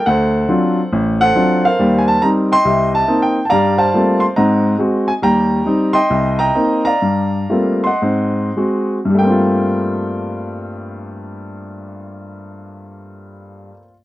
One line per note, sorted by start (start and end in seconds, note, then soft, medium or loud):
0.06 0.44 D2 medium
0.06 1.20 A4 medium
0.06 1.21 C5 medium
0.06 1.19 F#5 medium
0.49 0.79 F#3 medium
0.49 0.79 C4 medium
0.49 0.79 D4 medium
0.49 0.79 F4 medium
0.93 1.29 A1 medium
1.21 1.75 A4 medium
1.21 1.64 C5 medium
1.21 1.65 F#5 loud
1.36 1.65 F#3 medium
1.36 1.65 C4 soft
1.36 1.65 D4 soft
1.36 1.65 F4 medium
1.65 2.47 A#4 medium
1.65 2.46 C5 medium
1.65 2.01 F5 medium
1.79 2.16 D#2 medium
1.79 2.16 G3 medium
1.98 2.06 G#5 medium
2.08 2.21 A5 medium
2.22 2.51 G3 medium
2.22 2.52 C4 soft
2.22 2.52 D#4 medium
2.22 2.28 A#5 medium
2.52 3.33 D#5 medium
2.52 3.21 G5 medium
2.52 2.91 C6 loud
2.65 3.02 C2 medium
2.65 3.02 C3 medium
2.95 3.20 A5 medium
3.08 3.37 A#3 medium
3.08 3.37 C4 soft
3.08 3.37 D#4 medium
3.22 3.45 G5 medium
3.45 3.49 A5 medium
3.50 3.88 G2 medium
3.50 3.88 G3 medium
3.50 4.32 D5 medium
3.50 3.77 F5 medium
3.50 3.79 A#5 medium
3.78 4.32 C5 medium
3.78 4.32 F5 medium
3.78 4.23 A5 medium
3.94 4.23 G3 soft
3.94 4.23 A3 soft
3.94 4.23 A#3 soft
3.94 4.24 C4 soft
3.94 4.23 F4 medium
4.20 4.25 C6 medium
4.36 4.74 G#2 medium
4.36 4.74 C4 medium
4.36 5.18 D#5 medium
4.36 5.18 F#5 soft
4.36 4.76 A#5 medium
4.79 5.09 G#3 medium
4.79 5.09 C4 soft
4.79 5.09 F#4 medium
5.08 5.13 G#5 medium
5.22 5.60 D#2 medium
5.22 5.59 G3 medium
5.22 5.93 G5 medium
5.22 5.97 A#5 medium
5.65 5.96 G3 medium
5.65 5.96 C4 soft
5.65 5.96 D#4 medium
5.93 6.38 D#5 medium
5.93 6.38 G5 medium
5.93 6.35 C6 medium
6.10 6.49 C2 medium
6.39 6.98 D#5 medium
6.39 6.98 G5 medium
6.39 6.83 A#5 medium
6.55 6.87 A#3 medium
6.55 6.87 C4 soft
6.55 6.87 D#4 medium
6.85 7.80 D5 medium
6.85 7.81 F5 medium
6.85 7.80 A#5 medium
7.02 7.44 G2 medium
7.50 7.85 G3 soft
7.50 7.85 A3 soft
7.50 7.85 A#3 soft
7.50 7.86 C4 soft
7.50 7.85 F4 medium
7.84 8.92 D#5 medium
7.84 8.92 F#5 medium
7.84 8.91 C6 medium
8.02 8.49 G#2 medium
8.02 8.49 C4 medium
8.57 8.97 G#3 soft
8.57 8.97 C4 soft
8.57 8.98 F#4 medium
9.05 13.69 G2 medium
9.10 13.73 G3 medium
9.15 13.78 A3 medium
9.15 13.78 G5 medium
9.20 13.83 A#3 medium
9.25 13.88 C4 medium
9.30 13.93 F4 medium